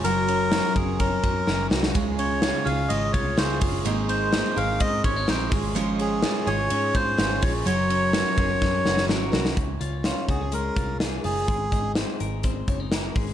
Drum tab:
RD |x-x-x-x-x-x-----|x-x-x-x-x-x-x-x-|x-x-x-x-x-x-x-x-|x-x-x-x-x-x-x-x-|
HH |p---------------|p-------------o-|p-------------o-|p-------------o-|
SD |----o-------o-oo|----o-------o---|----o-------o---|----o-------o---|
BD |------o-o-o-----|o---------o---o-|--------o-o---o-|----------o---o-|

RD |x-x-x-x---------|----------------|----------------|
HH |p---------------|x-x-x-x-x-x-x-o-|x-x-x-x-x-x-x-o-|
SD |----o---o-ooo-oo|----o-------o---|----o-------o---|
BD |------o-o-------|o-----o---o-----|o-o-----o-o---o-|